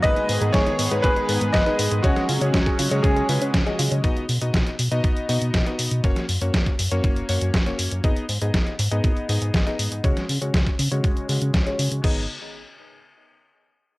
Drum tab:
CC |----------------|----------------|----------------|----------------|
HH |xxoxxxoxxxoxxxox|xxoxxxoxxxoxxxox|xxoxxxoxxxoxxxox|xxoxxxoxxxoxxxox|
SD |----o-------o---|-o--o-------o---|----o-------o---|-o--o-------o---|
BD |o---o---o---o---|o---oo--o---o---|o---o---o---o---|o---oo--o---o---|

CC |----------------|----------------|x---------------|
HH |xxoxxxoxxxoxxxox|xxoxxxoxxxoxxxox|----------------|
SD |----o-------o---|-o--o-------o---|----------------|
BD |o---o---o---o---|o---oo--o---o---|o---------------|